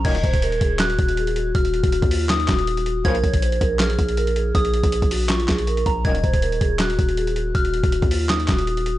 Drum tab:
CC |x---------------|----------------|----------------|----------------|
HH |xxxxxxx-xxxxxxx-|xxxxxxo-xxxxxxx-|xxxxxxx-xxxxxxx-|xxxxxxo-xxxxxxx-|
CP |--------x-------|--------x-x-----|--------x-------|--------x-x-----|
SD |--------o-------|--------o-o-----|--------o-------|--------o-o-----|
BD |o-oo--o---o-----|o--o-o----o-----|o-oo--o---o-----|o--o-o----o---o-|

CC |----------------|----------------|
HH |xxxxxxx-xxxxxxx-|xxxxxxo-xxxxxxx-|
CP |--------x-------|--------x-x-----|
SD |--------o-------|--------o-o-----|
BD |o-oo--o---o-----|o--o-o----o-----|